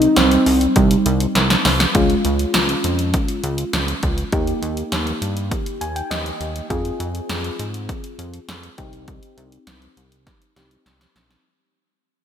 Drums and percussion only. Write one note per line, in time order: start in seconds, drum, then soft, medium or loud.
0.02 closed hi-hat medium
0.16 snare loud
0.16 closed hi-hat medium
0.32 closed hi-hat medium
0.46 open hi-hat medium
0.61 closed hi-hat medium
0.76 kick loud
0.76 closed hi-hat medium
0.91 closed hi-hat medium
1.06 closed hi-hat medium
1.20 closed hi-hat medium
1.35 snare medium
1.35 closed hi-hat medium
1.50 snare medium
1.50 closed hi-hat medium
1.65 snare loud
1.65 open hi-hat medium
1.80 snare loud
1.80 closed hi-hat medium
1.95 kick loud
1.95 closed hi-hat medium
2.10 closed hi-hat medium
2.25 closed hi-hat medium
2.39 closed hi-hat soft
2.54 snare loud
2.54 closed hi-hat medium
2.69 closed hi-hat medium
2.84 closed hi-hat medium
2.99 closed hi-hat soft
3.14 kick medium
3.14 closed hi-hat medium
3.28 closed hi-hat medium
3.44 closed hi-hat medium
3.58 closed hi-hat medium
3.73 snare loud
3.73 closed hi-hat medium
3.88 closed hi-hat medium
4.03 kick medium
4.03 closed hi-hat medium
4.18 closed hi-hat soft
4.32 kick loud
4.32 closed hi-hat medium
4.47 closed hi-hat medium
4.63 closed hi-hat medium
4.77 closed hi-hat soft
4.92 snare loud
4.92 closed hi-hat medium
5.07 closed hi-hat soft
5.22 closed hi-hat medium
5.37 closed hi-hat soft
5.51 kick medium
5.51 closed hi-hat medium
5.66 closed hi-hat medium
5.81 closed hi-hat medium
5.96 closed hi-hat soft
6.11 snare loud
6.11 closed hi-hat medium
6.26 closed hi-hat medium
6.41 closed hi-hat medium
6.56 closed hi-hat medium
6.70 kick loud
6.70 closed hi-hat medium
6.85 closed hi-hat medium
7.00 closed hi-hat medium
7.15 closed hi-hat soft
7.29 snare loud
7.29 closed hi-hat medium
7.44 closed hi-hat soft
7.59 closed hi-hat medium
7.74 closed hi-hat soft
7.89 kick medium
7.89 closed hi-hat medium
8.04 closed hi-hat medium
8.19 closed hi-hat medium
8.34 closed hi-hat medium
8.49 snare loud
8.49 closed hi-hat medium
8.63 closed hi-hat medium
8.78 kick medium
8.78 closed hi-hat medium
8.93 closed hi-hat medium
9.08 kick loud
9.08 closed hi-hat medium
9.23 closed hi-hat medium
9.38 closed hi-hat medium
9.52 closed hi-hat soft
9.67 snare loud
9.67 closed hi-hat medium
9.82 closed hi-hat soft
9.97 closed hi-hat medium
10.12 closed hi-hat soft
10.27 kick medium
10.27 snare medium
10.27 closed hi-hat medium
10.42 closed hi-hat medium
10.56 snare medium
10.56 closed hi-hat medium
10.71 closed hi-hat medium
10.86 snare medium
10.86 closed hi-hat medium
11.01 snare medium
11.01 closed hi-hat medium
11.16 snare medium
11.16 closed hi-hat medium
11.31 snare medium
11.31 closed hi-hat soft